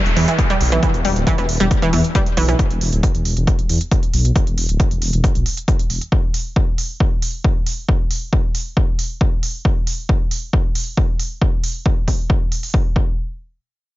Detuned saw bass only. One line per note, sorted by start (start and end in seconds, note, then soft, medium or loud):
0.06 0.14 E1 medium
0.17 0.26 E2 loud
0.61 0.78 B1 medium
0.94 1.03 E1 loud
1.05 1.14 E1 medium
1.16 1.25 D1 medium
1.38 1.47 E1 medium
1.49 1.58 E1 medium
1.60 1.69 E1 loud
1.82 1.91 E1 loud
1.93 2.02 E2 loud
2.37 2.55 B1 medium
2.71 2.79 E1 loud
2.81 2.90 E1 medium
2.93 3.01 D1 medium
3.15 3.23 E1 medium
3.25 3.34 E1 medium
3.37 3.45 E1 loud
3.59 3.67 E1 loud
3.69 3.78 E2 loud
4.14 4.31 B1 medium
4.47 4.55 E1 loud
4.58 4.67 E1 medium
4.69 4.78 D1 medium
4.91 5.00 E1 medium
5.02 5.11 E1 medium
5.13 5.22 E1 loud
5.35 5.44 B1 loud
5.90 5.99 E1 medium